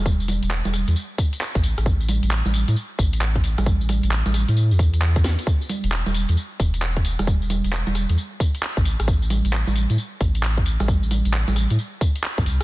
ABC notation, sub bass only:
X:1
M:4/4
L:1/16
Q:"Swing 16ths" 1/4=133
K:Ador
V:1 name="Sub bass" clef=bass
E,,,3 E,,,2 E,,,2 E,, z4 z A,,,2 A,,,- | A,,,3 A,,,2 A,,,2 A,, z2 A,,,4- A,,, A,,,- | A,,,3 A,,,2 A,,,2 A,,2 E,,6 z | z3 E,,,2 E,,,2 E,, z2 E,,,4- E,,, E,,,- |
E,,,3 E,,,2 E,,,2 E,, z4 z A,,,2 A,,,- | A,,,3 A,,,2 A,,,2 A,, z2 A,,,4- A,,, A,,,- | A,,,3 A,,,2 A,,,2 A,, z4 z E,, C,, z |]